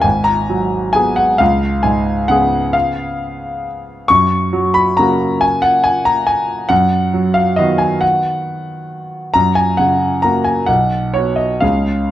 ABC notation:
X:1
M:3/4
L:1/8
Q:1/4=135
K:F#
V:1 name="Grand piano"
g a3 g f | e2 g2 f2 | e4 z2 | c'3 b a2 |
g f g a g2 | f3 e d g | f6 | a g f2 a g |
f2 c d e2 |]
V:2 name="Grand piano" clef=bass
G,,,2 F,2 [B,G]2 | C,,2 G,,2 [C,B,G]2- | [C,B,G]6 | F,,2 F,2 [C,A,F]2- |
[C,A,F]6 | F,,2 F,2 [D,B,F]2- | [D,B,F]6 | F,,2 C,2 [A,F]2 |
B,,,2 [B,F]2 [C,,C,G,C]2 |]